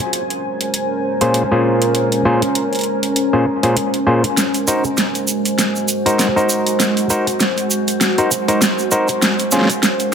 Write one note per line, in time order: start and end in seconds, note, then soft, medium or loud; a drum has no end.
0.00 4.33 G#3 medium
0.00 4.33 C#4 medium
0.00 4.37 C#4 medium
0.00 4.33 A#4 medium
0.00 6.33 A#4 medium
0.00 4.33 C5 medium
0.00 10.14 C5 medium
0.00 10.14 G#5 medium
0.00 closed hi-hat soft
0.13 closed hi-hat medium
0.30 closed hi-hat soft
0.61 closed hi-hat soft
0.74 closed hi-hat medium
1.21 1.43 A#2 medium
1.21 1.43 C#4 medium
1.21 1.43 F4 medium
1.21 1.43 G#4 medium
1.21 1.43 C5 medium
1.21 closed hi-hat soft
1.34 closed hi-hat medium
1.52 2.22 A#2 medium
1.52 2.22 C#4 medium
1.52 2.22 F4 medium
1.52 2.22 G#4 medium
1.52 2.22 C5 medium
1.82 closed hi-hat soft
1.95 closed hi-hat medium
2.12 closed hi-hat soft
2.25 2.41 A#2 medium
2.25 2.41 C#4 medium
2.25 2.41 F4 medium
2.25 2.41 G#4 medium
2.25 2.41 C5 loud
2.42 closed hi-hat soft
2.55 closed hi-hat medium
2.73 closed hi-hat soft
2.75 closed hi-hat soft
2.79 closed hi-hat soft
2.81 closed hi-hat soft
2.83 closed hi-hat soft
3.03 closed hi-hat soft
3.16 closed hi-hat medium
3.33 3.46 A#2 medium
3.33 3.46 C#4 medium
3.33 3.46 F4 medium
3.33 3.46 G#4 medium
3.33 3.46 C5 medium
3.63 3.76 A#2 medium
3.63 3.76 C#4 medium
3.63 3.76 F4 medium
3.63 3.76 G#4 medium
3.63 3.76 C5 medium
3.63 closed hi-hat soft
3.77 closed hi-hat medium
3.94 closed hi-hat soft
4.07 4.23 A#2 medium
4.07 4.23 C#4 medium
4.07 4.23 F4 medium
4.07 4.23 G#4 medium
4.07 4.23 C5 loud
4.24 closed hi-hat soft
4.37 10.14 G#3 medium
4.37 9.22 F#4 medium
4.37 9.18 F#4 medium
4.37 9.18 C5 medium
4.37 snare soft
4.37 closed hi-hat medium
4.37 shaker medium
4.54 closed hi-hat soft
4.54 shaker soft
4.67 4.84 D#4 medium
4.67 4.84 F#4 medium
4.67 4.84 A#4 medium
4.67 4.84 C5 medium
4.67 shaker medium
4.84 shaker soft
4.97 snare soft
4.97 closed hi-hat medium
4.97 shaker soft
5.15 closed hi-hat soft
5.15 shaker soft
5.28 shaker medium
5.45 closed hi-hat medium
5.45 shaker soft
5.58 snare soft
5.58 closed hi-hat medium
5.58 shaker soft
5.76 shaker soft
5.88 shaker medium
6.06 6.28 D#4 medium
6.06 6.28 F#4 medium
6.06 6.28 A#4 medium
6.06 6.28 C5 medium
6.06 closed hi-hat medium
6.06 shaker soft
6.19 snare medium
6.19 closed hi-hat medium
6.19 shaker soft
6.36 7.07 D#4 medium
6.36 7.07 F#4 medium
6.36 7.07 A#4 medium
6.36 7.07 C5 medium
6.36 shaker soft
6.50 shaker medium
6.67 closed hi-hat medium
6.67 shaker soft
6.80 snare medium
6.80 closed hi-hat medium
6.80 shaker soft
6.97 closed hi-hat soft
6.97 shaker soft
7.10 7.26 D#4 medium
7.10 7.26 F#4 medium
7.10 7.26 A#4 medium
7.10 7.26 C5 loud
7.10 shaker loud
7.27 closed hi-hat medium
7.27 shaker soft
7.40 snare medium
7.40 closed hi-hat medium
7.40 shaker medium
7.58 closed hi-hat soft
7.58 shaker soft
7.71 shaker medium
7.88 closed hi-hat medium
7.88 shaker soft
8.01 snare medium
8.01 closed hi-hat medium
8.01 shaker medium
8.18 8.31 D#4 medium
8.18 8.31 F#4 medium
8.18 8.31 A#4 medium
8.18 8.31 C5 medium
8.18 closed hi-hat soft
8.18 shaker soft
8.31 shaker loud
8.48 8.61 D#4 medium
8.48 8.61 F#4 medium
8.48 8.61 A#4 medium
8.48 8.61 C5 medium
8.48 closed hi-hat medium
8.48 shaker soft
8.62 snare medium
8.62 closed hi-hat medium
8.62 shaker medium
8.79 shaker soft
8.91 9.08 D#4 medium
8.91 9.08 F#4 medium
8.91 9.08 A#4 medium
8.91 9.08 C5 loud
8.91 shaker medium
9.08 closed hi-hat medium
9.08 shaker soft
9.22 10.14 C#4 medium
9.22 10.14 A#4 medium
9.22 10.14 C5 medium
9.22 snare medium
9.22 closed hi-hat medium
9.22 shaker medium
9.39 closed hi-hat soft
9.39 shaker soft
9.50 9.69 C#4 medium
9.50 9.69 F4 medium
9.50 9.69 G#4 medium
9.50 10.14 A#4 medium
9.50 9.69 C5 medium
9.50 snare soft
9.50 shaker loud
9.57 snare soft
9.61 10.14 C6 medium
9.61 snare medium
9.65 snare medium
9.70 closed hi-hat medium
9.70 shaker soft
9.83 snare medium
9.83 closed hi-hat medium
9.83 shaker medium
10.00 closed hi-hat soft
10.00 shaker soft